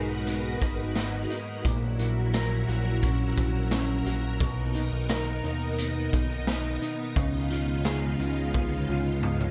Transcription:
Already playing: B1 G#2 G#3 B3 D#4 F#4 G#4 A#4 B4
0.27 B3, closed hi-hat
0.62 G#1 D#4, kick, closed hi-hat
0.96 B3, snare, closed hi-hat
1.30 D#4, closed hi-hat
1.65 A#1 A#2 F#3 E4 A#4, kick, closed hi-hat
1.99 F#4, closed hi-hat
2.33 A#4, snare, closed hi-hat
2.68 A#1 F#4, closed hi-hat
3.03 C#4, kick, closed hi-hat
3.37 A#1 F#4, kick, closed hi-hat
3.71 C#4, snare, closed hi-hat
4.06 A#1 F#4, closed hi-hat
4.40 B1 B2 B3 D#4, kick, closed hi-hat
4.74 D#4, closed hi-hat
4.92 B1
5.09 A#4, snare, closed hi-hat
5.44 D#2 D#4, closed hi-hat
5.78 B3, closed hi-hat
6.13 B1 D#4, kick, closed hi-hat
6.47 B3, snare, closed hi-hat
6.82 D#4, closed hi-hat
7.16 C#2 C#3 G#3 F4, kick, closed hi-hat
7.50 F4, closed hi-hat
7.84 G#4, snare, closed hi-hat
8.20 C#2 F4, closed hi-hat
8.54 B3, kick, high tom
8.89 C#2 F4
9.23 B3, mid tom
9.41 mid tom

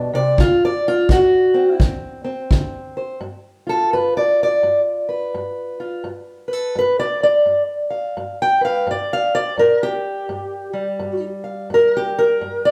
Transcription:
Already playing: B2 G3 D4
0.13 C3 D5
0.38 D3 F4, kick
0.65 D5
0.88 F4
1.09 D3 F#4, kick
1.54 C4
1.80 D3, kick
2.24 C4
2.51 D3, kick
2.97 C5
3.21 G2
3.67 F4 A4
3.93 G2 B4
4.17 D5
4.43 D5
4.63 G2
5.09 B4
5.34 G2
5.80 F4
6.04 G2
6.48 B4
6.53 A4
6.75 G2 B4
7.00 D5
7.23 D5
7.46 G2
7.90 F5
8.17 G2
8.42 G5
8.61 B4 F5
8.87 G2 D5
9.13 F5
9.35 D5
9.58 G2 A#4
9.83 G4
10.29 G2
10.73 G3
10.99 G2
11.44 F5
11.70 G2
11.74 A#4
11.97 G4
12.19 A#4
12.41 G2
12.65 D5

